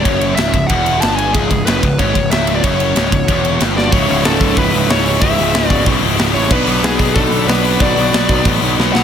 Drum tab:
CC |--------|--------|--------|--------|
RD |xxxxxxxx|xxxxxxxx|xxxxxxx-|--------|
HH |--------|--------|--------|oooooooo|
SD |--o---o-|--o---o-|--o---oo|--o---o-|
BD |o--oo---|oo-ooo--|o--oo---|o--oo---|

CC |--------|x-------|--------|
RD |--------|--------|--------|
HH |oooooooo|-ooooooo|oooooo--|
SD |--o---o-|--o---o-|--o---oo|
BD |o--oo---|o--oo---|o--oo---|